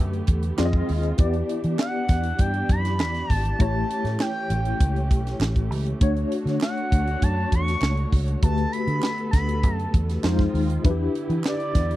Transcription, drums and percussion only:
0.13 closed hi-hat
0.27 kick, closed hi-hat
0.43 closed hi-hat
0.58 snare, clap
0.73 kick
0.89 open hi-hat
1.03 closed hi-hat
1.18 kick, closed hi-hat
1.34 closed hi-hat
1.49 closed hi-hat
1.64 closed hi-hat
1.79 snare, clap
2.09 kick, snare, closed hi-hat
2.23 closed hi-hat
2.39 kick, closed hi-hat
2.54 closed hi-hat
2.69 kick, closed hi-hat
2.85 snare, closed hi-hat
3.00 snare, clap
3.15 snare, closed hi-hat
3.30 kick, open hi-hat
3.45 closed hi-hat
3.60 kick, closed hi-hat
3.91 closed hi-hat
4.05 snare, closed hi-hat
4.20 snare, clap
4.50 closed hi-hat
4.65 closed hi-hat
4.80 kick, closed hi-hat
4.96 closed hi-hat
5.11 kick, closed hi-hat
5.27 snare, closed hi-hat
5.41 snare, clap
5.56 kick, closed hi-hat
5.72 open hi-hat
5.86 closed hi-hat
6.01 kick, closed hi-hat
6.17 closed hi-hat
6.32 closed hi-hat
6.47 snare, closed hi-hat
6.61 snare, clap
6.77 closed hi-hat
6.92 kick, closed hi-hat
7.07 closed hi-hat
7.22 kick, closed hi-hat
7.52 kick, closed hi-hat
7.68 snare, closed hi-hat
7.82 snare, clap
7.97 closed hi-hat
8.12 kick, open hi-hat
8.28 closed hi-hat
8.43 kick, closed hi-hat
8.58 closed hi-hat
8.73 closed hi-hat
8.88 closed hi-hat
9.03 snare, clap
9.18 closed hi-hat
9.33 kick, snare, closed hi-hat
9.49 closed hi-hat
9.63 kick, closed hi-hat
9.80 closed hi-hat
9.94 kick, closed hi-hat
10.10 snare, closed hi-hat
10.24 snare, clap
10.39 kick, snare
10.55 open hi-hat
10.70 closed hi-hat
10.85 kick, closed hi-hat
11.15 closed hi-hat
11.30 closed hi-hat
11.44 snare, clap
11.60 closed hi-hat
11.75 kick, snare, closed hi-hat
11.91 closed hi-hat

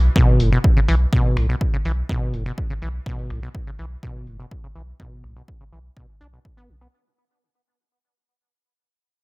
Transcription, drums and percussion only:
0.16 kick
0.40 open hi-hat
0.64 kick
0.88 open hi-hat
1.13 kick
1.37 finger snap, open hi-hat
1.61 kick
1.85 open hi-hat
2.09 kick
2.34 open hi-hat
2.46 open hi-hat
2.58 kick
2.82 open hi-hat
3.06 kick
3.19 open hi-hat
3.30 finger snap, open hi-hat
3.55 kick
3.79 open hi-hat
4.03 kick
4.27 open hi-hat
4.51 kick
4.76 open hi-hat
5.00 kick
5.24 finger snap, open hi-hat
5.48 kick
5.72 open hi-hat
5.97 kick
6.21 open hi-hat
6.45 kick
6.81 finger snap

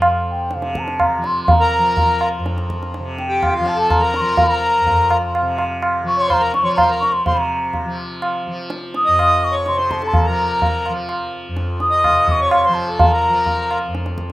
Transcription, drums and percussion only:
0.02 tabla na
0.51 tabla te
0.62 tabla te
0.75 tabla ke
0.88 tabla te
1.00 tabla na, tabla ge
1.24 tabla te
1.48 tabla tin, tabla ge
1.97 tabla tin, tabla ge
2.21 tabla na
2.46 tabla te
2.58 tabla te
2.70 tabla ke
2.83 tabla te
2.94 tabla te
3.18 tabla te
3.43 tabla na, tabla ge
3.66 tabla te
3.90 tabla na, tabla ge
4.14 tabla te
4.37 tabla tin, tabla ge
4.86 tabla tin, tabla ge
5.11 tabla na
5.35 tabla na
5.58 tabla na
5.82 tabla na
6.30 tabla na, tabla ge
6.54 tabla te
6.78 tabla na, tabla ge
7.03 tabla te
7.26 tabla tin, tabla ge
7.73 tabla tin, tabla ge
8.22 tabla na
8.70 tabla te
8.94 tabla te
9.19 tabla na
9.66 tabla te
9.79 tabla te
9.91 tabla ke
10.02 tabla te
10.14 tabla tin, tabla ge
10.62 tabla tin, tabla ge
10.86 tabla na
11.09 tabla na
11.57 tabla te
11.80 tabla te
12.04 tabla na, tabla ge
12.28 tabla ge
12.51 tabla na
12.99 tabla tin, tabla ge
13.46 tabla tin, tabla ge
13.71 tabla na
13.95 tabla te
14.06 tabla te
14.18 tabla ke

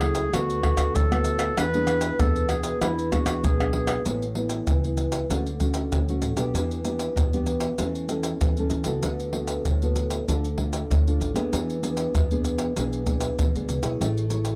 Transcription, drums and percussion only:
0.01 pandeiro, tamborim
0.15 pandeiro, maracas
0.34 pandeiro, tamborim, maracas, surdo
0.50 pandeiro, maracas
0.63 pandeiro, tamborim, surdo
0.77 pandeiro, tamborim, maracas
0.95 pandeiro, maracas, surdo
1.12 pandeiro, tamborim, maracas
1.24 pandeiro, maracas
1.39 pandeiro, tamborim, maracas
1.57 pandeiro, tamborim, maracas, surdo
1.74 pandeiro, maracas
1.87 pandeiro, tamborim, maracas
2.01 pandeiro, maracas
2.19 pandeiro, tamborim, maracas, surdo
2.36 pandeiro, maracas
2.49 pandeiro, tamborim, maracas
2.63 pandeiro, maracas
2.82 pandeiro, tamborim, maracas, surdo
2.99 pandeiro, maracas
3.12 pandeiro, tamborim, maracas, surdo
3.26 pandeiro, tamborim, maracas
3.44 pandeiro, maracas, surdo
3.60 pandeiro, tamborim, maracas
3.73 pandeiro
3.87 pandeiro, tamborim, maracas
4.05 pandeiro, maracas, surdo
4.22 pandeiro, maracas
4.35 pandeiro
4.49 pandeiro, maracas
4.67 pandeiro, maracas, surdo
4.84 pandeiro, maracas
4.97 pandeiro, maracas
5.12 pandeiro, maracas
5.30 pandeiro, maracas, surdo
5.46 pandeiro, maracas
5.60 pandeiro, maracas, surdo
5.74 pandeiro, maracas
5.92 pandeiro, maracas, surdo
6.09 pandeiro, maracas
6.22 pandeiro, maracas
6.37 pandeiro, maracas
6.55 pandeiro, maracas, surdo
6.71 pandeiro, maracas
6.85 pandeiro, maracas
6.99 pandeiro, maracas
7.17 pandeiro, maracas, surdo
7.33 pandeiro, maracas
7.46 pandeiro, maracas
7.60 pandeiro, maracas
7.78 pandeiro, maracas, surdo
7.95 pandeiro, maracas
8.09 pandeiro, maracas
8.23 pandeiro, maracas
8.41 pandeiro, maracas, surdo
8.57 pandeiro, maracas
8.70 pandeiro, maracas
8.84 pandeiro, maracas
9.03 pandeiro, maracas, surdo
9.20 pandeiro, maracas
9.33 pandeiro
9.47 pandeiro, maracas
9.65 pandeiro, maracas, surdo
9.82 pandeiro, maracas
9.96 pandeiro, maracas
10.10 pandeiro, maracas
10.28 pandeiro, maracas, surdo
10.44 pandeiro, maracas
10.58 pandeiro, surdo
10.73 pandeiro, maracas
10.91 pandeiro, maracas, surdo
11.07 pandeiro, maracas
11.21 pandeiro, maracas
11.36 pandeiro, maracas
11.53 pandeiro, maracas, surdo
11.70 pandeiro, maracas
11.83 pandeiro, maracas
11.97 pandeiro, maracas
12.15 pandeiro, maracas, surdo
12.31 pandeiro, maracas
12.44 pandeiro, maracas
12.58 pandeiro, maracas
12.76 pandeiro, maracas, surdo
12.93 pandeiro, maracas
13.06 pandeiro, maracas, surdo
13.20 pandeiro, maracas
13.39 pandeiro, maracas, surdo
13.55 pandeiro, maracas
13.69 pandeiro, maracas
13.83 pandeiro, maracas
14.01 pandeiro, maracas, surdo
14.17 pandeiro, maracas
14.30 pandeiro, maracas
14.45 pandeiro, maracas

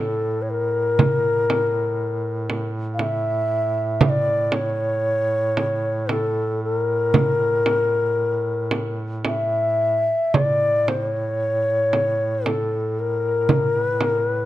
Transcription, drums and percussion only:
0.99 frame drum
1.50 frame drum
2.50 frame drum
2.99 frame drum
4.01 frame drum
4.52 frame drum
5.57 frame drum
6.09 frame drum
7.14 frame drum
7.66 frame drum
8.71 frame drum
9.25 frame drum
10.34 frame drum
10.88 frame drum
11.93 frame drum
12.46 frame drum
13.49 frame drum
14.01 frame drum

